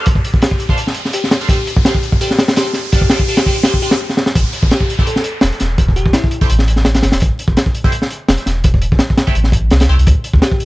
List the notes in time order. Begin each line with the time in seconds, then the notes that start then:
Already playing: riser
0.06 kick, closed hi-hat
0.15 kick
0.25 closed hi-hat
0.34 kick
0.42 G4, snare, closed hi-hat
0.51 kick
0.60 closed hi-hat
0.69 D4 A4 C5 F5, kick
0.78 closed hi-hat
0.87 snare
0.94 closed hi-hat
1.05 snare
1.13 G4, closed hi-hat
1.24 snare
1.31 snare, closed hi-hat
1.41 D4 A4 C5 F5
1.49 D4 G4 A4 C5 F5, kick, closed hi-hat
1.67 closed hi-hat
1.77 kick
1.85 D4 G4 A4 C5 F5, snare, closed hi-hat
1.95 kick
2.03 closed hi-hat
2.12 kick
2.21 D4 G4 A4 C5 F5, closed hi-hat
2.31 snare
2.38 snare, closed hi-hat
2.48 snare, closed hi-hat
2.56 D4 G4 A4 C5 F5, snare, closed hi-hat
2.66 closed hi-hat
2.73 snare, closed hi-hat
2.92 D4 G4 A4 C5 F5, kick, closed hi-hat
3.02 kick
3.10 D4 G4 A4 C5 F5, snare, closed hi-hat
3.19 kick
3.28 D4 G4 A4 C5 F5, closed hi-hat
3.37 snare, closed hi-hat
3.46 D4 G4 A4 C5 F5, kick
3.56 closed hi-hat
3.63 D4 G4 A4 C5 F5, snare, closed hi-hat
3.74 kick
3.82 D4 G4 A4 C5 F5, closed hi-hat
3.91 snare, closed hi-hat
4.09 snare
4.17 snare
4.26 snare
4.35 A1, kick, closed hi-hat, downlifter
4.53 closed hi-hat
4.63 A1, kick
4.71 G4, snare, closed hi-hat
4.80 kick
4.90 closed hi-hat
4.99 A3 E4 G4 C5, kick
5.07 A4, closed hi-hat
5.16 snare
5.24 closed hi-hat
5.41 E1, snare, closed hi-hat
5.53 closed hi-hat
5.60 E1, snare, closed hi-hat
5.78 kick, closed hi-hat
5.88 kick
5.96 G4, closed hi-hat
6.06 A1, kick
6.13 E4, snare, closed hi-hat
6.24 kick
6.31 closed hi-hat
6.41 A3 E4 G4 C5, kick
6.50 A1, closed hi-hat
6.59 snare
6.68 closed hi-hat
6.76 snare
6.85 snare, closed hi-hat
6.95 snare, closed hi-hat
7.03 G1, snare, closed hi-hat
7.12 snare, closed hi-hat
7.20 A1, kick, closed hi-hat
7.39 closed hi-hat
7.48 A1, kick
7.57 snare, closed hi-hat
7.66 kick
7.75 closed hi-hat
7.84 A3 E4 G4 C5, kick
7.92 closed hi-hat
8.02 snare
8.11 closed hi-hat
8.28 E1, snare, closed hi-hat
8.37 closed hi-hat
8.46 E1, snare, closed hi-hat
8.64 kick, closed hi-hat
8.74 kick
8.82 closed hi-hat
8.92 A1, kick
8.99 snare, closed hi-hat
9.10 kick
9.17 snare, closed hi-hat
9.27 A3 E4 G4 C5, kick
9.35 A1, closed hi-hat
9.44 snare
9.52 kick, closed hi-hat
9.70 C2, snare, closed hi-hat
9.80 snare, closed hi-hat
9.89 C2 A3 E4 G4 C5
9.98 C2, closed hi-hat
10.07 D2, kick, closed hi-hat
10.24 closed hi-hat
10.34 D2, kick
10.42 G4, snare, closed hi-hat
10.52 kick
10.60 closed hi-hat